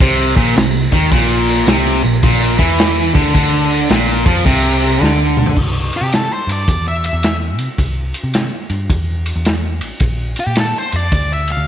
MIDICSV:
0, 0, Header, 1, 5, 480
1, 0, Start_track
1, 0, Tempo, 555042
1, 974, Time_signature, 4, 2, 24, 8
1, 10096, End_track
2, 0, Start_track
2, 0, Title_t, "Lead electric guitar"
2, 0, Program_c, 0, 29
2, 5160, Note_on_c, 0, 67, 79
2, 5302, Note_off_c, 0, 67, 0
2, 5322, Note_on_c, 0, 69, 81
2, 5463, Note_off_c, 0, 69, 0
2, 5465, Note_on_c, 0, 72, 80
2, 5614, Note_off_c, 0, 72, 0
2, 5638, Note_on_c, 0, 74, 82
2, 5936, Note_off_c, 0, 74, 0
2, 5949, Note_on_c, 0, 76, 82
2, 6096, Note_off_c, 0, 76, 0
2, 6106, Note_on_c, 0, 76, 94
2, 6355, Note_off_c, 0, 76, 0
2, 8991, Note_on_c, 0, 67, 82
2, 9138, Note_off_c, 0, 67, 0
2, 9161, Note_on_c, 0, 69, 76
2, 9322, Note_off_c, 0, 69, 0
2, 9322, Note_on_c, 0, 72, 85
2, 9475, Note_off_c, 0, 72, 0
2, 9475, Note_on_c, 0, 74, 87
2, 9776, Note_off_c, 0, 74, 0
2, 9801, Note_on_c, 0, 76, 78
2, 9943, Note_off_c, 0, 76, 0
2, 9960, Note_on_c, 0, 77, 89
2, 10096, Note_off_c, 0, 77, 0
2, 10096, End_track
3, 0, Start_track
3, 0, Title_t, "Distorted electric guitar"
3, 0, Program_c, 1, 30
3, 7, Note_on_c, 1, 48, 117
3, 311, Note_off_c, 1, 48, 0
3, 315, Note_on_c, 1, 46, 104
3, 484, Note_off_c, 1, 46, 0
3, 491, Note_on_c, 1, 48, 76
3, 740, Note_off_c, 1, 48, 0
3, 796, Note_on_c, 1, 51, 110
3, 960, Note_off_c, 1, 51, 0
3, 963, Note_on_c, 1, 46, 117
3, 1444, Note_off_c, 1, 46, 0
3, 1450, Note_on_c, 1, 48, 112
3, 1753, Note_off_c, 1, 48, 0
3, 1760, Note_on_c, 1, 46, 74
3, 1898, Note_off_c, 1, 46, 0
3, 1931, Note_on_c, 1, 46, 113
3, 2233, Note_off_c, 1, 46, 0
3, 2240, Note_on_c, 1, 52, 98
3, 2712, Note_off_c, 1, 52, 0
3, 2720, Note_on_c, 1, 50, 119
3, 2884, Note_off_c, 1, 50, 0
3, 2895, Note_on_c, 1, 50, 104
3, 3369, Note_off_c, 1, 50, 0
3, 3375, Note_on_c, 1, 46, 111
3, 3674, Note_off_c, 1, 46, 0
3, 3686, Note_on_c, 1, 53, 100
3, 3849, Note_off_c, 1, 53, 0
3, 3857, Note_on_c, 1, 48, 109
3, 4332, Note_off_c, 1, 48, 0
3, 4332, Note_on_c, 1, 50, 107
3, 4807, Note_off_c, 1, 50, 0
3, 10096, End_track
4, 0, Start_track
4, 0, Title_t, "Picked electric bass"
4, 0, Program_c, 2, 34
4, 3, Note_on_c, 2, 36, 99
4, 296, Note_off_c, 2, 36, 0
4, 316, Note_on_c, 2, 34, 97
4, 478, Note_off_c, 2, 34, 0
4, 487, Note_on_c, 2, 36, 79
4, 778, Note_off_c, 2, 36, 0
4, 795, Note_on_c, 2, 39, 99
4, 958, Note_off_c, 2, 39, 0
4, 963, Note_on_c, 2, 34, 97
4, 1415, Note_off_c, 2, 34, 0
4, 1448, Note_on_c, 2, 36, 102
4, 1739, Note_off_c, 2, 36, 0
4, 1769, Note_on_c, 2, 34, 87
4, 1922, Note_off_c, 2, 34, 0
4, 1927, Note_on_c, 2, 34, 95
4, 2218, Note_off_c, 2, 34, 0
4, 2236, Note_on_c, 2, 40, 91
4, 2686, Note_off_c, 2, 40, 0
4, 2724, Note_on_c, 2, 38, 91
4, 2882, Note_off_c, 2, 38, 0
4, 2895, Note_on_c, 2, 38, 93
4, 3340, Note_off_c, 2, 38, 0
4, 3376, Note_on_c, 2, 34, 100
4, 3663, Note_off_c, 2, 34, 0
4, 3684, Note_on_c, 2, 41, 92
4, 3841, Note_off_c, 2, 41, 0
4, 3855, Note_on_c, 2, 36, 95
4, 4300, Note_off_c, 2, 36, 0
4, 4336, Note_on_c, 2, 38, 93
4, 4781, Note_off_c, 2, 38, 0
4, 4811, Note_on_c, 2, 36, 83
4, 5095, Note_off_c, 2, 36, 0
4, 5201, Note_on_c, 2, 48, 76
4, 5423, Note_off_c, 2, 48, 0
4, 5598, Note_on_c, 2, 43, 84
4, 5756, Note_off_c, 2, 43, 0
4, 5776, Note_on_c, 2, 40, 89
4, 6136, Note_off_c, 2, 40, 0
4, 6166, Note_on_c, 2, 40, 84
4, 6558, Note_off_c, 2, 40, 0
4, 6558, Note_on_c, 2, 48, 84
4, 6638, Note_off_c, 2, 48, 0
4, 6729, Note_on_c, 2, 36, 85
4, 7015, Note_off_c, 2, 36, 0
4, 7122, Note_on_c, 2, 48, 74
4, 7345, Note_off_c, 2, 48, 0
4, 7523, Note_on_c, 2, 43, 85
4, 7679, Note_off_c, 2, 43, 0
4, 7693, Note_on_c, 2, 40, 89
4, 8055, Note_off_c, 2, 40, 0
4, 8092, Note_on_c, 2, 40, 79
4, 8486, Note_off_c, 2, 40, 0
4, 8486, Note_on_c, 2, 33, 83
4, 8563, Note_off_c, 2, 33, 0
4, 8652, Note_on_c, 2, 34, 87
4, 8937, Note_off_c, 2, 34, 0
4, 9052, Note_on_c, 2, 46, 72
4, 9271, Note_off_c, 2, 46, 0
4, 9454, Note_on_c, 2, 41, 88
4, 9606, Note_off_c, 2, 41, 0
4, 9616, Note_on_c, 2, 38, 87
4, 9977, Note_off_c, 2, 38, 0
4, 10006, Note_on_c, 2, 38, 85
4, 10096, Note_off_c, 2, 38, 0
4, 10096, End_track
5, 0, Start_track
5, 0, Title_t, "Drums"
5, 3, Note_on_c, 9, 49, 88
5, 4, Note_on_c, 9, 36, 115
5, 89, Note_off_c, 9, 49, 0
5, 90, Note_off_c, 9, 36, 0
5, 316, Note_on_c, 9, 36, 113
5, 319, Note_on_c, 9, 49, 68
5, 403, Note_off_c, 9, 36, 0
5, 405, Note_off_c, 9, 49, 0
5, 488, Note_on_c, 9, 49, 82
5, 499, Note_on_c, 9, 38, 115
5, 574, Note_off_c, 9, 49, 0
5, 586, Note_off_c, 9, 38, 0
5, 798, Note_on_c, 9, 36, 113
5, 800, Note_on_c, 9, 49, 72
5, 884, Note_off_c, 9, 36, 0
5, 887, Note_off_c, 9, 49, 0
5, 966, Note_on_c, 9, 36, 107
5, 967, Note_on_c, 9, 49, 83
5, 1053, Note_off_c, 9, 36, 0
5, 1053, Note_off_c, 9, 49, 0
5, 1271, Note_on_c, 9, 49, 67
5, 1358, Note_off_c, 9, 49, 0
5, 1442, Note_on_c, 9, 49, 79
5, 1453, Note_on_c, 9, 38, 117
5, 1528, Note_off_c, 9, 49, 0
5, 1539, Note_off_c, 9, 38, 0
5, 1753, Note_on_c, 9, 49, 57
5, 1839, Note_off_c, 9, 49, 0
5, 1925, Note_on_c, 9, 49, 81
5, 1929, Note_on_c, 9, 36, 107
5, 2012, Note_off_c, 9, 49, 0
5, 2016, Note_off_c, 9, 36, 0
5, 2233, Note_on_c, 9, 49, 60
5, 2239, Note_on_c, 9, 36, 105
5, 2319, Note_off_c, 9, 49, 0
5, 2326, Note_off_c, 9, 36, 0
5, 2410, Note_on_c, 9, 49, 77
5, 2421, Note_on_c, 9, 38, 113
5, 2496, Note_off_c, 9, 49, 0
5, 2507, Note_off_c, 9, 38, 0
5, 2724, Note_on_c, 9, 36, 111
5, 2728, Note_on_c, 9, 49, 67
5, 2811, Note_off_c, 9, 36, 0
5, 2815, Note_off_c, 9, 49, 0
5, 2894, Note_on_c, 9, 49, 81
5, 2895, Note_on_c, 9, 36, 107
5, 2980, Note_off_c, 9, 49, 0
5, 2982, Note_off_c, 9, 36, 0
5, 3204, Note_on_c, 9, 49, 57
5, 3291, Note_off_c, 9, 49, 0
5, 3368, Note_on_c, 9, 49, 84
5, 3379, Note_on_c, 9, 38, 120
5, 3454, Note_off_c, 9, 49, 0
5, 3465, Note_off_c, 9, 38, 0
5, 3684, Note_on_c, 9, 36, 108
5, 3686, Note_on_c, 9, 49, 64
5, 3770, Note_off_c, 9, 36, 0
5, 3772, Note_off_c, 9, 49, 0
5, 3857, Note_on_c, 9, 36, 108
5, 3859, Note_on_c, 9, 49, 82
5, 3943, Note_off_c, 9, 36, 0
5, 3946, Note_off_c, 9, 49, 0
5, 4172, Note_on_c, 9, 49, 65
5, 4258, Note_off_c, 9, 49, 0
5, 4351, Note_on_c, 9, 38, 59
5, 4437, Note_off_c, 9, 38, 0
5, 4646, Note_on_c, 9, 45, 96
5, 4724, Note_on_c, 9, 43, 99
5, 4732, Note_off_c, 9, 45, 0
5, 4810, Note_off_c, 9, 43, 0
5, 4814, Note_on_c, 9, 36, 99
5, 4814, Note_on_c, 9, 57, 104
5, 4900, Note_off_c, 9, 36, 0
5, 4901, Note_off_c, 9, 57, 0
5, 5126, Note_on_c, 9, 51, 65
5, 5213, Note_off_c, 9, 51, 0
5, 5296, Note_on_c, 9, 51, 83
5, 5307, Note_on_c, 9, 38, 102
5, 5382, Note_off_c, 9, 51, 0
5, 5394, Note_off_c, 9, 38, 0
5, 5614, Note_on_c, 9, 51, 67
5, 5700, Note_off_c, 9, 51, 0
5, 5776, Note_on_c, 9, 36, 106
5, 5779, Note_on_c, 9, 51, 83
5, 5862, Note_off_c, 9, 36, 0
5, 5865, Note_off_c, 9, 51, 0
5, 6087, Note_on_c, 9, 51, 64
5, 6174, Note_off_c, 9, 51, 0
5, 6253, Note_on_c, 9, 51, 85
5, 6264, Note_on_c, 9, 38, 106
5, 6339, Note_off_c, 9, 51, 0
5, 6350, Note_off_c, 9, 38, 0
5, 6560, Note_on_c, 9, 51, 69
5, 6647, Note_off_c, 9, 51, 0
5, 6732, Note_on_c, 9, 36, 101
5, 6732, Note_on_c, 9, 51, 84
5, 6818, Note_off_c, 9, 36, 0
5, 6818, Note_off_c, 9, 51, 0
5, 7040, Note_on_c, 9, 51, 62
5, 7127, Note_off_c, 9, 51, 0
5, 7209, Note_on_c, 9, 51, 86
5, 7220, Note_on_c, 9, 38, 105
5, 7295, Note_off_c, 9, 51, 0
5, 7306, Note_off_c, 9, 38, 0
5, 7520, Note_on_c, 9, 51, 59
5, 7606, Note_off_c, 9, 51, 0
5, 7694, Note_on_c, 9, 36, 108
5, 7695, Note_on_c, 9, 51, 92
5, 7780, Note_off_c, 9, 36, 0
5, 7781, Note_off_c, 9, 51, 0
5, 8006, Note_on_c, 9, 51, 73
5, 8092, Note_off_c, 9, 51, 0
5, 8173, Note_on_c, 9, 51, 87
5, 8185, Note_on_c, 9, 38, 107
5, 8260, Note_off_c, 9, 51, 0
5, 8271, Note_off_c, 9, 38, 0
5, 8484, Note_on_c, 9, 51, 79
5, 8570, Note_off_c, 9, 51, 0
5, 8646, Note_on_c, 9, 51, 93
5, 8653, Note_on_c, 9, 36, 102
5, 8732, Note_off_c, 9, 51, 0
5, 8740, Note_off_c, 9, 36, 0
5, 8959, Note_on_c, 9, 51, 68
5, 9045, Note_off_c, 9, 51, 0
5, 9128, Note_on_c, 9, 51, 96
5, 9139, Note_on_c, 9, 38, 100
5, 9214, Note_off_c, 9, 51, 0
5, 9225, Note_off_c, 9, 38, 0
5, 9444, Note_on_c, 9, 51, 64
5, 9531, Note_off_c, 9, 51, 0
5, 9615, Note_on_c, 9, 51, 88
5, 9616, Note_on_c, 9, 36, 104
5, 9702, Note_off_c, 9, 51, 0
5, 9703, Note_off_c, 9, 36, 0
5, 9924, Note_on_c, 9, 51, 65
5, 10010, Note_off_c, 9, 51, 0
5, 10096, End_track
0, 0, End_of_file